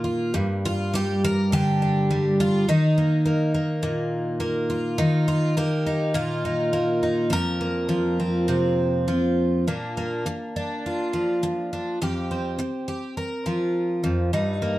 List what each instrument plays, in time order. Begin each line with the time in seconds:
Already playing: twelve-string acoustic guitar A#2 D#3 A#3
0.04 twelve-string acoustic guitar F4
0.34 twelve-string acoustic guitar G2
0.65 twelve-string acoustic guitar F4
0.94 twelve-string acoustic guitar G3 G4
1.24 twelve-string acoustic guitar A#4
1.52 twelve-string acoustic guitar D3 G4
1.82 twelve-string acoustic guitar D4
2.11 twelve-string acoustic guitar G3
2.40 twelve-string acoustic guitar F4
2.68 twelve-string acoustic guitar D#3 D#4
2.98 twelve-string acoustic guitar A#3
3.25 twelve-string acoustic guitar A#3
3.54 twelve-string acoustic guitar A#3
3.83 twelve-string acoustic guitar A#2
4.40 twelve-string acoustic guitar A#3
4.70 twelve-string acoustic guitar F4
4.98 twelve-string acoustic guitar D#3
5.28 twelve-string acoustic guitar F4
5.57 twelve-string acoustic guitar A#3 G4
5.87 twelve-string acoustic guitar D#4
6.14 twelve-string acoustic guitar A#2 F4
6.45 twelve-string acoustic guitar D#4
6.73 twelve-string acoustic guitar A#3
7.03 twelve-string acoustic guitar D#4
7.30 twelve-string acoustic guitar F2 A#4
7.61 twelve-string acoustic guitar A#3
7.89 twelve-string acoustic guitar F3
8.20 twelve-string acoustic guitar C4
8.48 twelve-string acoustic guitar C3 C4
9.08 twelve-string acoustic guitar F3
9.68 twelve-string acoustic guitar A#2 D4
9.97 twelve-string acoustic guitar A#3
10.26 muted twelve-string acoustic guitar stroke
10.56 twelve-string acoustic guitar D4
10.86 twelve-string acoustic guitar F4
11.13 twelve-string acoustic guitar F3
11.43 muted twelve-string acoustic guitar stroke
11.73 twelve-string acoustic guitar D4
12.02 twelve-string acoustic guitar F2 G4
12.31 twelve-string acoustic guitar C4
12.59 muted twelve-string acoustic guitar stroke
12.88 twelve-string acoustic guitar G4
13.17 twelve-string acoustic guitar A#4
13.46 twelve-string acoustic guitar F3
14.04 twelve-string acoustic guitar F2
14.33 twelve-string acoustic guitar G2 D#4
14.62 twelve-string acoustic guitar A#3